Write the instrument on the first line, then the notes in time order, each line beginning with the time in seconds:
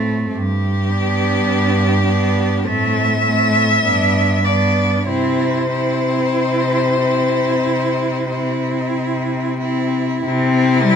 cello
Already playing: A2 A3 C4
0.32 G2 G4
0.88 B3 D4
1.42 G2
2.05 B3 D4
2.67 A2 A3 C4 E5
3.25 A3 C4
3.84 G2 B3 D4
4.44 B3 D4 D5
5.07 C3 C4 E4 C5
5.73 C4 E4
6.38 C3
7.03 C4 E4
7.67 C3
8.32 C4 E4
8.96 C3
9.60 C4 E4
10.24 C3 C4 E4
10.85 G3 C4